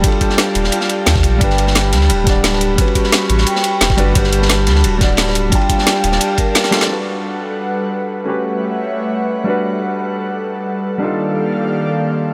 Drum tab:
RD |x-x-x---x---x---x---x---x---x---|x---x---x---x---x---x---x---x---|x-x-x---x---x---x---x---x---x---|x---x---x---x---x---x---x---x---|
HH |x---x---x---x---x---x---x---x---|x---x---x---x---x---x---x---x---|x---x---x---x---x---x---x---x---|x---x---x---x---x---x---x---x---|
SD |------o-o-----o---o-----o-o-----|--o---o-o---o-o-----o---o-o-----|------o-o-----o---o-----o-o-----|--o---o-o---o-o-----o---o-o-----|
BD |o---o---------------------o-----|o-------------------o-----------|o---o---------------------o-----|o-------------------o-----------|

RD |x-x-x---x---x---x---x---x---xxx-|--------------------------------|--------------------------------|--------------------------------|
HH |x---x---x---x---x---x---x---x---|--------------------------------|------------o-------------------|--------------------------------|
SD |------o-o-----o---------o-o-ooo-|--------------------------------|--------------------------------|--------------------------------|
BD |o---o---------------o-----------|--------------------------------|--------------------------------|--------------------------------|

RD |--------------------------------|
HH |------------o-------------------|
SD |--------------------------------|
BD |--------------------------------|